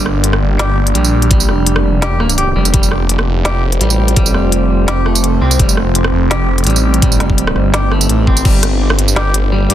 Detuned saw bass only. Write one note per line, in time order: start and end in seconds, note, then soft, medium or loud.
0.00 0.40 G1 loud
0.41 0.94 G1 loud
0.95 1.47 A#1 loud
1.49 2.54 F1 loud
2.56 2.72 F1 loud
2.74 3.26 F1 loud
3.27 3.79 F1 loud
3.81 4.33 A1 loud
4.34 5.40 F1 medium
5.42 5.58 C2 loud
5.60 6.12 F1 loud
6.13 6.65 F1 loud
6.67 7.19 A1 loud
7.20 7.54 F1 loud
7.56 8.08 G1 loud
8.09 8.44 A1 loud
8.45 9.15 G1 loud
9.16 9.69 G1 loud
9.70 9.74 G2 loud